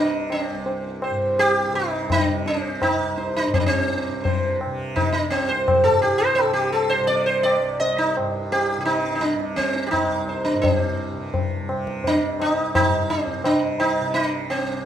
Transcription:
0.00 0.51 C2 medium
0.00 1.11 G2 medium
0.00 1.70 C3 medium
0.00 0.28 D4 medium
0.30 0.99 C4 medium
0.30 tabla na medium
0.51 2.88 C2 medium
0.66 tabla tin medium
1.02 1.36 C5 soft
1.02 tabla na medium
1.11 3.47 G2 medium
1.38 1.75 G4 loud
1.38 tabla tin medium
1.70 2.29 C3 medium
1.74 2.12 D#4 medium
1.74 tabla na medium
2.10 2.44 D4 medium
2.10 tabla na medium
2.10 tabla ge medium
2.29 4.07 C3 medium
2.46 2.84 C4 medium
2.46 tabla te medium
2.82 3.37 D#4 medium
2.82 tabla na medium
2.82 tabla ge medium
2.88 5.25 C2 medium
3.18 3.51 C5 soft
3.18 tabla te medium
3.37 3.54 D4 medium
3.48 5.83 G2 medium
3.54 3.59 C4 medium
3.54 tabla tin medium
3.54 tabla ge medium
3.60 3.66 D4 medium
3.66 4.56 C4 medium
4.07 4.66 C3 medium
4.24 4.57 C5 soft
4.24 tabla tin medium
4.24 tabla ge medium
4.61 tabla na medium
4.66 6.42 C3 medium
4.96 5.14 D#4 medium
4.96 tabla tin medium
4.96 tabla ge medium
5.13 5.30 D4 medium
5.25 7.59 C2 medium
5.30 5.49 C4 medium
5.30 tabla na medium
5.49 5.86 C5 medium
5.68 tabla na medium
5.68 tabla ge medium
5.83 8.17 G2 medium
5.83 6.01 A4 medium
6.02 6.21 G4 medium
6.02 tabla te medium
6.18 6.38 C5 medium
6.35 6.53 A4 medium
6.35 tabla na medium
6.42 7.00 C3 medium
6.53 6.72 G4 medium
6.72 6.92 A4 medium
6.72 tabla na medium
6.89 7.07 C5 medium
7.00 8.78 C3 medium
7.07 7.26 D5 medium
7.07 tabla tin medium
7.26 7.43 C5 medium
7.43 7.81 D5 medium
7.43 tabla na medium
7.59 9.95 C2 medium
7.80 7.98 D#5 medium
7.80 tabla tin medium
7.98 8.15 D#4 medium
8.17 10.53 G2 medium
8.17 tabla na medium
8.52 8.79 G4 medium
8.52 tabla tin medium
8.78 9.36 C3 medium
8.78 8.85 G4 medium
8.85 9.14 D#4 medium
8.85 tabla na medium
9.15 9.22 D#4 medium
9.21 9.56 D4 medium
9.21 tabla te medium
9.36 11.12 C3 medium
9.40 tabla te medium
9.56 9.87 C4 medium
9.56 tabla ke medium
9.75 tabla te medium
9.87 9.91 G4 medium
9.91 10.46 D#4 medium
9.91 tabla na medium
9.91 tabla ge medium
9.95 12.25 C2 medium
10.28 10.61 C5 soft
10.28 tabla te medium
10.45 10.61 D4 medium
10.53 12.85 G2 medium
10.62 11.64 C4 medium
10.62 tabla tin medium
10.62 tabla ge medium
11.12 11.70 C3 medium
11.34 tabla tin medium
11.34 tabla ge medium
11.69 13.44 C3 medium
11.69 tabla na medium
11.87 tabla ke medium
12.04 12.42 D4 medium
12.04 tabla tin medium
12.04 tabla ge medium
12.26 14.59 C2 medium
12.40 12.74 D#4 medium
12.40 tabla na medium
12.75 13.11 D#4 loud
12.75 tabla na medium
12.75 tabla ge medium
12.85 14.85 G2 medium
13.10 13.45 C4 medium
13.10 tabla te medium
13.27 tabla ge medium
13.44 14.01 C3 medium
13.44 13.81 D4 medium
13.44 tabla na medium
13.80 14.12 D#4 medium
13.80 tabla na medium
14.01 14.85 C3 medium
14.14 14.25 D#4 medium
14.14 tabla tin medium
14.25 14.50 D4 medium
14.50 14.85 C4 medium
14.50 tabla na medium
14.59 14.85 C2 medium

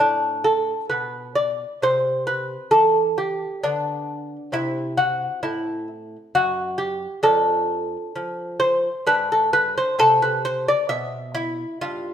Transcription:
0.00 0.73 A2 soft
0.00 1.78 B3 soft
0.00 0.44 D4 medium
0.44 0.89 A4 medium
0.90 1.63 B2 soft
0.90 1.34 B4 medium
1.35 1.79 D5 medium
1.82 2.55 C3 soft
1.82 3.60 C4 soft
1.82 2.26 C5 medium
2.27 2.71 B4 medium
2.71 3.44 E3 soft
2.71 3.16 A4 medium
3.18 3.61 G4 medium
3.63 4.36 D3 soft
3.63 4.50 B3 soft
3.63 4.50 D4 medium
4.52 5.26 C3 medium
4.52 7.19 C4 soft
4.52 4.97 E4 medium
4.97 5.42 F#4 medium
5.43 6.16 A2 soft
5.43 5.87 E4 medium
6.35 7.06 F#2 medium
6.35 6.77 F#4 medium
6.78 7.21 G4 medium
7.23 7.96 F2 medium
7.23 9.01 D4 soft
7.23 8.56 A4 medium
8.16 8.88 F3 soft
8.60 9.04 C5 medium
9.07 9.80 G2 medium
9.07 9.94 D4 soft
9.07 9.29 B4 medium
9.32 9.53 A4 medium
9.53 9.75 B4 medium
9.78 9.99 C5 medium
9.99 10.72 C3 medium
9.99 12.14 C4 soft
9.99 10.21 A4 loud
10.22 10.44 B4 medium
10.45 10.67 C5 medium
10.68 10.89 D5 medium
10.89 11.64 B2 medium
10.89 11.33 E5 medium
11.35 11.80 E4 medium
11.81 12.14 G2 medium
11.81 12.14 F4 medium

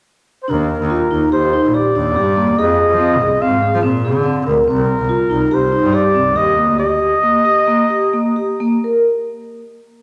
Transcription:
0.43 0.52 C5 soft
0.48 0.75 D#2 medium
0.48 0.79 D4 medium
0.48 1.32 A#4 medium
0.80 0.98 D#2 medium
0.90 1.05 F4 medium
1.11 1.29 D#2 medium
1.11 1.26 D#4 medium
1.32 1.59 D#2 medium
1.32 1.48 G4 medium
1.32 1.76 C5 medium
1.53 1.69 D#4 medium
1.65 1.82 A#1 medium
1.74 1.90 G4 medium
1.74 2.60 D5 medium
1.95 2.18 D#2 medium
1.95 2.11 D4 medium
2.16 2.51 G2 medium
2.16 2.31 G4 medium
2.37 2.52 A#3 medium
2.49 2.57 D#2 medium
2.58 2.77 F2 medium
2.58 2.89 G#4 medium
2.58 3.43 D#5 medium
2.91 3.23 F3 medium
3.00 3.15 C4 medium
3.21 3.39 C2 medium
3.21 3.36 G#4 medium
3.41 3.60 G#2 medium
3.41 3.57 C4 medium
3.41 3.84 F5 medium
3.63 3.78 G#4 medium
3.75 3.83 F3 medium
3.83 4.17 A#2 medium
3.83 3.99 C4 medium
4.05 4.20 G#4 medium
4.16 4.42 D3 medium
4.26 4.41 C4 medium
4.47 4.64 D2 medium
4.47 4.62 A#4 medium
4.68 4.94 C2 medium
4.68 4.98 C4 medium
4.68 5.56 A#4 medium
5.00 5.17 C2 medium
5.09 5.25 F4 medium
5.30 5.48 C2 medium
5.30 5.45 D#4 medium
5.51 5.78 C2 medium
5.51 5.67 G4 medium
5.51 5.96 C5 medium
5.72 5.88 D#4 medium
5.83 6.01 G2 medium
5.93 6.09 G4 medium
5.93 6.38 D5 medium
6.15 6.37 C2 medium
6.15 6.30 C4 medium
6.36 6.70 D#2 medium
6.36 6.52 G4 medium
6.36 6.79 D#5 medium
6.57 6.73 A#3 medium
6.68 6.77 D2 medium
6.79 7.11 G4 medium
6.79 8.57 D#5 medium
7.23 7.39 A#3 medium
7.45 7.61 G4 medium
7.67 7.84 A#3 medium
7.90 8.07 G4 medium
8.14 8.30 A#3 medium
8.36 8.54 G4 medium
8.60 8.78 A#3 medium
8.84 9.02 A#4 medium

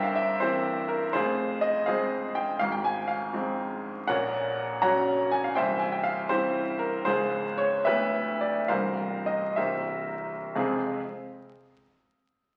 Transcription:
0.00 1.10 G1 medium
0.00 1.10 G2 medium
0.00 0.89 A#4 medium
0.00 0.40 C5 medium
0.00 0.16 E5 medium
0.00 0.16 F5 medium
0.00 1.16 G5 medium
0.16 0.40 E5 medium
0.40 1.10 E3 soft
0.40 1.10 A#3 soft
0.40 1.11 C4 soft
0.40 0.86 E4 medium
0.40 0.86 G4 medium
0.40 0.89 C5 medium
0.89 1.13 A#4 medium
1.13 2.57 F1 medium
1.13 2.57 F2 medium
1.13 1.60 F4 medium
1.13 1.60 G#4 medium
1.13 1.63 C5 medium
1.61 1.86 D#5 medium
1.86 2.57 F3 soft
1.86 2.57 G#3 soft
1.86 2.57 C4 soft
1.86 2.32 G#4 medium
1.86 2.32 C5 medium
1.86 2.35 F5 medium
2.35 2.60 G5 medium
2.59 4.06 G#1 medium
2.59 4.06 G#2 medium
2.59 2.72 F5 loud
2.72 2.84 G5 medium
2.84 3.09 G#5 medium
3.08 3.33 F5 medium
3.33 4.05 F3 soft
3.33 4.06 G#3 soft
3.33 4.06 C4 soft
4.07 5.53 A#1 medium
4.07 5.54 A#2 medium
4.07 4.79 A#4 medium
4.07 4.79 C#5 medium
4.07 4.81 F#5 medium
4.82 5.53 F#3 soft
4.82 5.53 C#4 soft
4.82 5.54 F#4 soft
4.82 5.29 C#5 medium
4.82 5.29 F#5 medium
4.82 5.32 A#5 medium
5.31 5.45 G#5 medium
5.44 5.57 F5 medium
5.55 7.02 C1 medium
5.55 7.02 C2 medium
5.55 5.79 C5 medium
5.55 5.80 E5 medium
5.55 5.80 G5 medium
5.79 5.92 G#5 medium
5.92 6.05 G5 medium
6.03 6.29 F5 medium
6.29 7.03 G3 soft
6.29 7.03 C4 soft
6.29 6.78 E4 medium
6.29 6.77 G4 medium
6.29 6.81 C5 medium
6.79 7.06 A#4 medium
7.05 7.83 C#1 medium
7.05 7.83 C#2 medium
7.05 7.81 F3 soft
7.05 7.81 G#3 soft
7.05 7.55 F4 medium
7.05 7.54 G#4 medium
7.05 7.58 C5 medium
7.58 7.85 C#5 medium
7.85 8.67 D1 soft
7.85 8.67 D2 medium
7.85 8.66 F3 soft
7.85 8.66 B3 soft
7.85 8.37 G4 medium
7.85 8.37 B4 medium
7.85 8.40 E5 medium
8.41 8.69 D5 medium
8.68 9.55 C1 soft
8.68 9.55 C2 medium
8.68 9.54 G3 soft
8.68 9.54 A#3 soft
8.68 9.54 G4 soft
8.68 9.23 A#4 medium
8.68 9.23 C5 medium
8.68 9.27 F5 medium
9.26 9.57 D#5 medium
9.56 10.53 C1 soft
9.56 10.54 C2 soft
9.56 10.52 G3 soft
9.56 10.53 A#3 soft
9.56 10.53 G4 soft
9.56 10.52 A#4 medium
9.56 10.52 C5 soft
9.56 10.55 E5 medium
10.55 10.88 F2 medium
10.55 10.88 C3 soft
10.55 10.88 G#3 medium
10.55 10.89 C4 medium
10.55 10.89 F4 medium
10.55 10.89 G#4 medium
10.55 10.88 F5 soft

